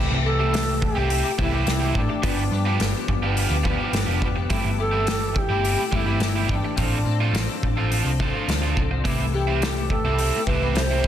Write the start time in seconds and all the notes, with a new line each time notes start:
Already playing: E3 G3 A3 C4 E4 G4
0.00 G4
0.11 C2
0.25 E3 A3 E4 G4 A4
0.38 G3 A3 C4 E4 G4
0.52 E3 A3 E4 G4, snare, open hi-hat
0.66 A3 E4 G4
0.82 G4, muted overdriven electric guitar stroke, kick
0.95 C2 G3 A3 C4 E4 G4
1.10 G3 C4 E4 G4, open hi-hat
1.24 A3 E4 G4
1.38 C2 E3 G3 A3 C4 E4 G4, kick
1.52 G3 A3 C4 E4 G4
1.66 C2 E3 A3 E4 G4, snare, open hi-hat
1.80 G3 C4 E4 G4
1.94 A1 E3 A3 E4 G4, kick
1.98 D4
2.08 A3 E4 G4, muted overdriven electric guitar stroke
2.22 G1 F3 B3 D4 F4 G4, kick, open hi-hat
2.51 G2 F3 B3 D4 G4
2.65 F3 B3 D4 F4 G4
2.80 G1 F3 B3 D4 G4, snare, open hi-hat
2.95 B3 D4 G4
3.08 G1, muted overdriven electric guitar stroke, kick
3.22 F3 B3 D4 F4 G4
3.35 F3 B3 F4 G4, open hi-hat
3.50 D2 B3 D4 G4
3.63 F3 B3 D4 F4 G4, kick
3.77 F3 B3 D4 F4 G4
3.82 B3
3.93 G1 F3 B3 D4 G4, snare, open hi-hat
4.06 F1 F3 B3 F4 G4
4.22 F3 B3 D4 G4, kick
4.36 B3 D4 G4, muted overdriven electric guitar stroke
4.50 G1 E3 G3 A3 C4 E4 G4, kick, open hi-hat
4.64 G1
4.78 E3 A3 E4 G4 A4
4.91 G3 A3 C4 E4 G4
5.07 E3 A3 E4 G4, snare, open hi-hat
5.21 A3 E4 G4
5.35 G4, muted overdriven electric guitar stroke, kick
5.49 G1 G3 A3 C4 E4 G4
5.63 G3 C4 E4 G4, open hi-hat
5.78 A3 E4 G4
5.91 G1 E3 G3 A3 C4 E4 G4, kick
5.96 E4
6.06 G3 A3 C4 E4 G4
6.19 G1 E3 A3 E4 G4, snare, open hi-hat
6.35 G3 C4 E4 G4
6.48 G1 E3 A3 D4 E4 G4, kick
6.62 A3 E4 G4, muted overdriven electric guitar stroke
6.76 A1 F3 A3 C4 D4 F4 A4, kick, open hi-hat
7.05 A2 F3 C4 D4 A4
7.20 F3 A3 C4 D4 F4 A4
7.33 A1 F3 C4 D4 A4, snare, open hi-hat
7.47 C4 D4 A4
7.62 A1, muted overdriven electric guitar stroke, kick
7.76 F3 A3 C4 D4 F4 A4
7.91 F3 A3 C4 F4, open hi-hat
8.04 C2 C4 D4 A4
8.20 F3 A3 C4 D4 F4 A4, kick
8.33 F3 A3 C4 D4 F4 A4
8.48 D2 F3 C4 D4 A4, snare, open hi-hat
8.62 F3 A3 C4 F4
8.76 C2 F3 C4 D4 A4, kick
8.91 C4 D4 A4, muted overdriven electric guitar stroke
9.04 C2 C3 E3 G3 A3 C4 E4 G4, kick, open hi-hat
9.19 C2
9.33 E3 A3 E4 G4
9.47 C3 G3 A3 C4 E4 G4
9.61 E3 A3 E4 G4, snare, open hi-hat
9.77 A3 E4 G4
9.90 A4, muted overdriven electric guitar stroke, kick
10.04 C2 C3 G3 A3 C4 E4 G4
10.19 C3 G3 C4 E4, open hi-hat
10.34 A3 E4 G4
10.46 C2 C3 E3 G3 A3 C4 E4 G4 B4, kick
10.61 C3 G3 A3 C4 E4 G4
10.74 C2 E3 A3 E4 G4 C5, snare, open hi-hat
10.91 C3 G3 C4 E4
11.04 D2 E3 A3, kick